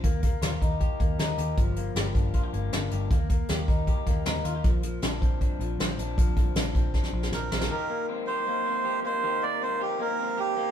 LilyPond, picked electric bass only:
\new Staff \with { instrumentName = "Picked electric bass" } { \clef bass \time 4/4 \key ees \major \tempo 4 = 156 ees,4 ees,8 ees,8. r16 ees,8 ees,8 ees,8 | g,,4 g,,8 g,,8. r16 g,,8 g,,8 g,,8 | ees,4 ees,8 ees,8. r16 ees,8 ees,8 ees,8 | bes,,4 bes,,8 bes,,8. r16 bes,,8 bes,,8 bes,,8 |
bes,,4 bes,,8 bes,,8. r16 bes,,8 bes,,8 bes,,8 | r1 | r1 | }